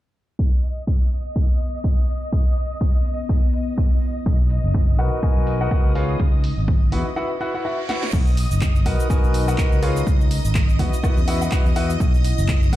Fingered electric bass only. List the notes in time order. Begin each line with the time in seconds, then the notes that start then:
4.26 B1
4.64 F#1
4.99 B1
5.37 B1
5.85 C#2
6.20 C#2
6.57 G#1
6.92 E2
8.13 B1
8.51 F#1
8.86 B1
9.24 B1
9.72 C#2
10.07 C#2
10.45 G#1
10.79 E2
11.17 E2
11.66 E2
12.00 B1
12.38 F#1
12.73 B1